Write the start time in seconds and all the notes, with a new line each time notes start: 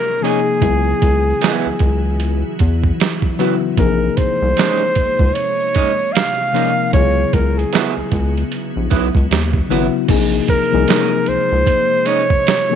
Already playing: C3 G#3 A#3 D#4 A#4
0.21 C3 F3 A#3 C#4 D#4 G#4
0.25 G#4, closed hi-hat
0.60 C#2 C#3 E3 F#3 B3 E4 G#4, kick, closed hi-hat
1.02 C#2, kick, closed hi-hat
1.41 F#3 B3 E4, snare, closed hi-hat
1.66 C#2
1.79 C#2, kick, closed hi-hat
2.20 closed hi-hat
2.59 E2, kick, closed hi-hat
2.84 kick
3.00 snare, closed hi-hat
3.22 kick
3.38 C#3 F#3 B3 E4 F#4, closed hi-hat
3.77 A#1 C3 F3 G#3 A#3 D#4 G#4 A#4, kick, closed hi-hat
4.17 C5, kick, closed hi-hat
4.42 C2
4.57 G#3 C#4 D#4, snare, closed hi-hat
4.95 C#2, kick, closed hi-hat
5.19 C#2, kick
5.34 C#5, closed hi-hat
5.75 G#3 C#4 D#4, kick, closed hi-hat
6.12 F5, closed hi-hat
6.17 snare
6.53 C3 F3 G#3 A#3 C#4 D#4 A#4, closed hi-hat
6.93 C#2 C#3 F#3 B3 E4 G#4 C#5, kick, closed hi-hat
7.33 C#2 A#4, kick, closed hi-hat
7.58 G#4, closed hi-hat
7.73 F#3 B3 E4, snare, closed hi-hat
7.97 C#2
8.12 C#2, kick, closed hi-hat
8.37 closed hi-hat
8.52 closed hi-hat
8.76 A#1
8.90 B1 F#3 B3 E4, kick, closed hi-hat
9.15 C#2, kick, closed hi-hat
9.31 D#2, snare, closed hi-hat
9.53 kick
9.69 G#1 C#3 F#3 B3 E4 F#4, closed hi-hat
10.07 A#1 C3 F3 G#3 A#3 D#4 G#4, kick, closed hi-hat, crash
10.48 A#4, kick, closed hi-hat
10.71 C2 C3 F3 A#3 D#4 G#4
10.88 G#3 C#4 D#4, snare, closed hi-hat
11.26 C#2 C5, closed hi-hat
11.52 C#2
11.67 kick, closed hi-hat
12.05 G#3 C#4 D#4 C#5, closed hi-hat
12.30 kick
12.47 snare, closed hi-hat
12.70 C3 F3 A#3 D#4